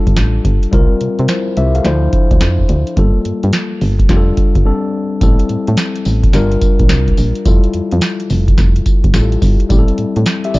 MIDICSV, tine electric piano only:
0, 0, Header, 1, 2, 480
1, 0, Start_track
1, 0, Tempo, 560748
1, 622, Time_signature, 4, 2, 24, 8
1, 9065, End_track
2, 0, Start_track
2, 0, Title_t, "Tine electric piano"
2, 0, Program_c, 0, 4
2, 0, Control_c, 0, 64, 127
2, 0, Note_on_c, 0, 55, 75
2, 0, Note_on_c, 0, 62, 77
2, 0, Note_on_c, 0, 65, 72
2, 0, Note_on_c, 0, 69, 84
2, 600, Note_off_c, 0, 55, 0
2, 604, Note_off_c, 0, 62, 0
2, 607, Note_off_c, 0, 65, 0
2, 611, Note_off_c, 0, 69, 0
2, 612, Note_on_c, 0, 55, 78
2, 620, Note_on_c, 0, 60, 64
2, 627, Note_on_c, 0, 65, 68
2, 634, Note_on_c, 0, 70, 83
2, 635, Control_c, 0, 64, 0
2, 766, Control_c, 0, 64, 127
2, 1095, Note_off_c, 0, 65, 0
2, 1099, Note_off_c, 0, 70, 0
2, 1106, Note_on_c, 0, 72, 65
2, 1111, Note_on_c, 0, 64, 59
2, 1332, Note_off_c, 0, 72, 0
2, 1335, Note_off_c, 0, 64, 0
2, 1346, Note_on_c, 0, 76, 76
2, 1352, Note_on_c, 0, 67, 63
2, 1492, Note_off_c, 0, 76, 0
2, 1495, Note_off_c, 0, 67, 0
2, 1499, Note_on_c, 0, 77, 62
2, 1506, Note_on_c, 0, 69, 57
2, 1558, Note_off_c, 0, 55, 0
2, 1562, Note_off_c, 0, 60, 0
2, 1575, Note_on_c, 0, 53, 85
2, 1582, Note_on_c, 0, 62, 76
2, 1589, Note_on_c, 0, 64, 78
2, 1595, Control_c, 0, 64, 0
2, 1596, Note_on_c, 0, 72, 90
2, 1726, Note_off_c, 0, 77, 0
2, 1730, Note_off_c, 0, 69, 0
2, 1734, Control_c, 0, 64, 127
2, 2519, Note_off_c, 0, 53, 0
2, 2523, Note_off_c, 0, 62, 0
2, 2527, Note_off_c, 0, 64, 0
2, 2530, Note_off_c, 0, 72, 0
2, 2535, Note_on_c, 0, 55, 75
2, 2541, Note_on_c, 0, 58, 63
2, 2548, Note_on_c, 0, 65, 63
2, 2553, Control_c, 0, 64, 0
2, 2556, Note_on_c, 0, 69, 79
2, 2707, Control_c, 0, 64, 127
2, 3479, Note_off_c, 0, 55, 0
2, 3483, Note_off_c, 0, 58, 0
2, 3486, Note_off_c, 0, 65, 0
2, 3490, Note_off_c, 0, 69, 0
2, 3503, Note_on_c, 0, 55, 76
2, 3506, Note_on_c, 0, 62, 72
2, 3509, Note_on_c, 0, 65, 75
2, 3512, Note_on_c, 0, 67, 72
2, 3515, Control_c, 0, 64, 0
2, 3567, Note_on_c, 0, 69, 90
2, 3579, Note_off_c, 0, 67, 0
2, 3678, Control_c, 0, 64, 127
2, 3971, Note_off_c, 0, 55, 0
2, 3979, Note_off_c, 0, 62, 0
2, 3982, Note_off_c, 0, 69, 0
2, 3982, Note_on_c, 0, 55, 74
2, 3986, Note_off_c, 0, 65, 0
2, 3986, Note_on_c, 0, 60, 64
2, 3989, Note_on_c, 0, 62, 67
2, 3992, Note_on_c, 0, 69, 80
2, 3995, Control_c, 0, 64, 0
2, 4117, Control_c, 0, 64, 127
2, 4447, Note_off_c, 0, 55, 0
2, 4454, Note_off_c, 0, 60, 0
2, 4457, Note_on_c, 0, 55, 74
2, 4464, Note_on_c, 0, 60, 67
2, 4466, Note_off_c, 0, 62, 0
2, 4468, Note_off_c, 0, 69, 0
2, 4471, Note_on_c, 0, 64, 69
2, 4475, Control_c, 0, 64, 0
2, 4478, Note_on_c, 0, 69, 82
2, 4604, Control_c, 0, 64, 127
2, 5401, Note_off_c, 0, 55, 0
2, 5404, Note_off_c, 0, 60, 0
2, 5408, Note_off_c, 0, 64, 0
2, 5411, Note_off_c, 0, 69, 0
2, 5418, Note_on_c, 0, 55, 77
2, 5425, Note_on_c, 0, 62, 76
2, 5432, Control_c, 0, 64, 0
2, 5432, Note_on_c, 0, 65, 78
2, 5438, Note_on_c, 0, 70, 91
2, 5577, Control_c, 0, 64, 127
2, 6361, Note_off_c, 0, 55, 0
2, 6365, Note_off_c, 0, 62, 0
2, 6368, Note_off_c, 0, 65, 0
2, 6372, Note_off_c, 0, 70, 0
2, 6378, Note_on_c, 0, 55, 74
2, 6385, Note_on_c, 0, 64, 66
2, 6392, Note_on_c, 0, 65, 67
2, 6393, Control_c, 0, 64, 0
2, 6399, Note_on_c, 0, 69, 76
2, 6543, Control_c, 0, 64, 127
2, 7792, Note_off_c, 0, 55, 0
2, 7795, Note_off_c, 0, 64, 0
2, 7799, Note_off_c, 0, 65, 0
2, 7802, Note_off_c, 0, 69, 0
2, 7825, Note_on_c, 0, 55, 55
2, 7827, Note_on_c, 0, 64, 52
2, 7831, Note_on_c, 0, 65, 52
2, 7835, Note_on_c, 0, 67, 47
2, 7890, Note_on_c, 0, 69, 59
2, 7901, Note_off_c, 0, 67, 0
2, 8287, Note_off_c, 0, 55, 0
2, 8297, Note_on_c, 0, 55, 81
2, 8301, Note_off_c, 0, 64, 0
2, 8304, Note_on_c, 0, 60, 68
2, 8307, Note_off_c, 0, 65, 0
2, 8311, Note_on_c, 0, 64, 63
2, 8314, Control_c, 0, 64, 0
2, 8318, Note_on_c, 0, 67, 69
2, 8336, Note_off_c, 0, 69, 0
2, 8375, Note_on_c, 0, 69, 80
2, 8382, Note_off_c, 0, 67, 0
2, 8474, Control_c, 0, 64, 127
2, 8778, Note_off_c, 0, 64, 0
2, 8810, Note_off_c, 0, 69, 0
2, 8944, Note_on_c, 0, 76, 69
2, 8948, Note_on_c, 0, 67, 58
2, 9022, Note_off_c, 0, 76, 0
2, 9024, Note_off_c, 0, 67, 0
2, 9027, Note_on_c, 0, 74, 76
2, 9065, Note_off_c, 0, 55, 0
2, 9065, Note_off_c, 0, 60, 0
2, 9065, Note_off_c, 0, 74, 0
2, 9065, End_track
0, 0, End_of_file